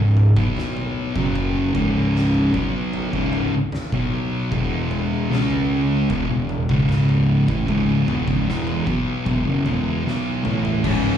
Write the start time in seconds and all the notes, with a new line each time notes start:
Already playing: C#1 C#2 G#2
0.17 floor tom
0.36 B1 B2 F#3 B3, kick
0.57 snare, mid tom
0.77 floor tom
1.15 F#1 F#2 C#3 F#3, kick
1.35 kick, floor tom
1.75 C#1 C#2 G#2 C#3, kick, floor tom
2.16 snare
2.34 floor tom
2.54 B1 B2 F#3 B3, kick
2.93 floor tom
3.13 C#1 C#2 G#2 C#3, kick
3.33 floor tom
3.72 snare, mid tom
3.92 B1 B2 F#3 B3, kick, floor tom
4.52 E1 E2 B2 E3, kick, floor tom
4.91 floor tom
5.31 C#2 C#3 G#3 C#4, snare
5.50 floor tom
6.10 E1 E2 B2, kick, floor tom
6.29 E1 E2 B2
6.49 floor tom
6.69 C#1 C#2 G#2 C#3, kick
6.89 snare, mid tom
7.09 floor tom
7.47 A1 A2 E3, kick
7.68 C#1 C#2 G#2 C#3, kick, floor tom
8.08 E1 E2 B2, floor tom
8.27 C#1 C#2 G#2, kick
8.47 E1 E2 B2 E3, snare
8.67 floor tom
8.86 B1 B2 F#3 B3, kick
9.26 E1 E2 B2, kick, floor tom
9.46 F#1 F#2 C#3
9.65 E1 E2 B2 E3, floor tom
10.05 B1 B2 F#3 B3, snare
10.44 A1 A2 E3 A3, mid tom
10.65 floor tom
10.84 C#1 C#2 G#2 C#3, kick, crash